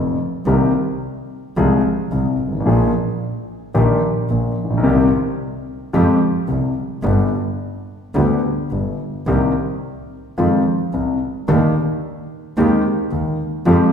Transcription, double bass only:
0.00 0.14 F1 medium
0.46 0.70 C2 medium
1.57 1.80 C2 medium
2.12 2.35 C2 medium
2.39 2.66 G#1 medium
2.67 2.90 A#1 loud
3.75 3.98 A#1 medium
4.30 4.53 A#1 medium
4.58 4.84 A#1 soft
4.84 5.07 C2 loud
5.94 6.17 F2 loud
6.48 6.71 C2 medium
7.04 7.27 G1 loud
8.15 8.38 D2 loud
8.71 8.95 G1 medium
9.27 9.50 C2 loud
10.38 10.61 F2 medium
10.93 11.16 C2 medium
11.48 11.71 D#2 loud
12.57 12.80 D#2 loud
13.11 13.34 D#2 medium
13.66 13.89 F2 loud

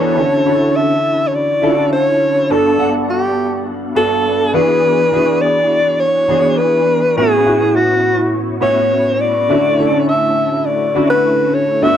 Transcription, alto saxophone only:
0.00 0.78 C#5 loud
0.76 1.29 E5 loud
1.28 1.36 C#5 medium
1.35 1.92 D5 loud
1.93 2.53 C#5 loud
2.51 2.93 A4 loud
3.10 3.66 G4 medium
3.97 4.56 A4 loud
4.55 5.43 B4 loud
5.41 6.01 D5 loud
6.00 6.59 C#5 loud
6.58 7.16 B4 loud
7.17 7.78 G#4 loud
7.76 8.36 F#4 medium
8.62 9.22 C#5 loud
9.21 10.08 D5 loud
10.09 10.68 E5 medium
10.66 11.10 D5 medium
11.10 11.56 B4 loud
11.54 11.85 C#5 loud
11.83 11.97 E5 loud

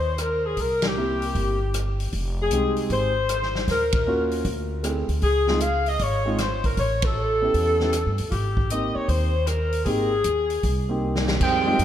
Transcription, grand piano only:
0.96 1.55 A#3 medium
0.96 1.56 C4 medium
0.96 1.56 E4 medium
0.96 1.56 G4 medium
2.52 3.11 G#3 medium
2.52 3.11 C4 medium
2.52 3.11 D#4 medium
2.52 3.12 G4 medium
4.07 4.45 A#3 medium
4.07 4.45 C#4 medium
4.07 4.46 F4 medium
4.07 4.46 F#4 medium
4.83 5.06 A3 medium
4.83 5.06 C4 soft
4.83 5.07 E4 soft
4.83 5.07 G#4 medium
5.47 5.59 G#3 medium
5.47 5.60 C4 medium
5.47 5.60 D#4 medium
5.47 5.60 F4 medium
6.25 6.37 G#3 medium
6.25 6.37 C4 medium
6.25 6.38 D#4 medium
6.25 6.38 F4 medium
7.42 7.78 B3 medium
7.42 7.78 C#4 soft
7.42 7.78 E4 soft
7.42 7.79 G4 medium
7.81 7.92 B3 medium
7.81 7.92 C#4 medium
7.81 7.93 E4 medium
7.81 7.93 G4 medium
8.71 9.30 A#3 soft
8.71 9.30 C4 soft
8.71 9.30 D#4 soft
8.71 9.31 G4 medium
9.86 10.09 A#3 medium
9.86 10.09 C4 medium
9.86 10.10 D#4 medium
9.86 10.10 G4 medium
10.89 11.38 A#3 medium
10.89 11.39 C4 medium
10.89 11.39 D#4 medium
10.89 11.40 G4 medium
11.67 11.78 G#3 medium
11.67 11.79 C4 medium
11.67 11.79 D#4 medium
11.67 11.79 F4 medium
11.67 11.79 G4 medium

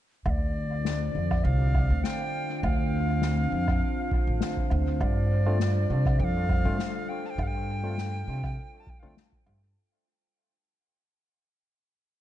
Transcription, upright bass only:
0.26 1.12 D2 medium
1.15 1.41 F2 medium
1.45 1.87 C2 medium
1.90 2.02 D2 medium
2.63 3.50 D2 medium
3.52 3.78 F2 medium
4.27 4.40 A1 medium
4.71 4.98 D2 medium
5.01 5.87 G2 medium
5.90 6.16 C3 medium
6.19 6.62 F2 medium
6.65 6.77 G2 medium
7.38 8.25 G2 medium
8.27 8.54 C3 medium
9.03 9.15 D2 medium
9.46 9.73 G2 medium

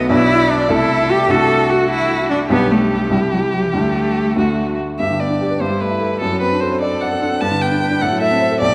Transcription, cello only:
0.00 0.11 B3 loud
0.11 0.52 E4 loud
0.51 0.70 D4 medium
0.70 1.12 E4 loud
1.11 1.32 G4 loud
1.30 1.71 A4 loud
1.70 1.90 F#4 medium
1.90 2.30 E4 loud
2.30 2.38 D4 medium
2.51 2.73 B3 loud
2.71 3.11 A3 medium
3.12 3.20 G3 medium
3.32 3.40 F#3 medium
3.53 3.67 F#3 medium
3.65 3.74 E3 medium
3.75 4.76 A3 medium
4.99 5.56 G4 medium
5.60 6.20 E4 soft
6.21 6.83 F#4 medium
6.81 7.40 A4 medium
7.41 8.03 B4 medium
8.01 8.61 A4 medium
8.61 8.74 G4 medium

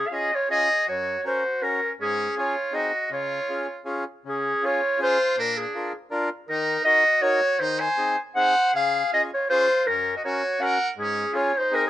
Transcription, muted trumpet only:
0.08 0.12 G#4 medium
0.08 0.34 G#4 medium
0.33 0.49 F4 medium
0.50 0.85 G#4 loud
0.87 1.22 F#4 medium
1.24 1.64 F#4 medium
1.63 1.91 C#4 medium
2.01 2.35 C#4 loud
2.37 2.77 F4 medium
2.75 3.11 F#4 medium
3.12 3.82 F4 medium
4.28 4.67 C#4 medium
4.65 5.01 F4 medium
5.02 5.36 F4 loud
5.38 5.60 D4 loud
5.60 5.95 D4 medium
6.50 6.84 D#4 loud
6.86 7.24 F#4 medium
7.24 7.62 F#4 loud
7.60 7.81 D#4 loud
7.80 8.18 C5 loud
8.36 8.71 C5 loud
8.74 9.09 G#4 medium
9.12 9.21 G#4 medium
9.33 9.48 F4 medium
9.49 9.89 F4 loud
9.87 10.15 C#4 medium
10.16 10.23 F#4 medium
10.24 10.65 F#4 medium
10.63 10.90 A#4 loud
11.00 11.36 C#4 loud
11.35 11.58 F4 medium
11.57 11.74 D#4 medium
11.74 11.83 D#4 medium
11.84 11.90 C4 medium

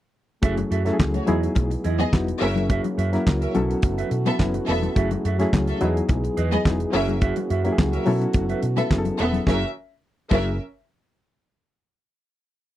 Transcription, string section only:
1.14 1.26 A3 medium
1.14 1.26 F#4 medium
1.14 1.26 C#5 medium
1.99 2.11 B3 medium
1.99 2.11 G#4 medium
1.99 2.11 D#5 loud
2.40 2.65 C#4 loud
2.40 2.65 A#4 medium
2.40 2.65 E5 loud
3.41 3.52 C#4 medium
3.41 3.52 A#4 medium
3.41 3.52 E5 medium
4.26 4.37 B3 medium
4.26 4.38 A4 medium
4.26 4.38 E5 loud
4.67 4.92 B3 loud
4.67 4.92 A4 medium
4.67 4.92 E5 loud
5.67 5.79 C#4 medium
5.67 5.78 A4 medium
5.67 5.79 E5 medium
6.51 6.63 B3 loud
6.51 6.63 G#4 medium
6.51 6.63 D#5 medium
6.93 7.17 C#4 medium
6.93 7.17 A#4 medium
6.93 7.17 E5 loud
7.92 8.04 C#4 medium
7.92 8.04 A#4 medium
7.92 8.04 E5 medium
8.76 8.88 B3 medium
8.76 8.88 A4 medium
8.76 8.88 E5 loud
9.19 9.43 B3 loud
9.19 9.43 A4 medium
9.19 9.43 E5 loud
9.47 9.63 C#4 medium
9.47 9.64 A#4 medium
9.47 9.63 E5 loud
10.31 10.57 C#4 medium
10.31 10.57 A#4 medium
10.31 10.57 E5 loud

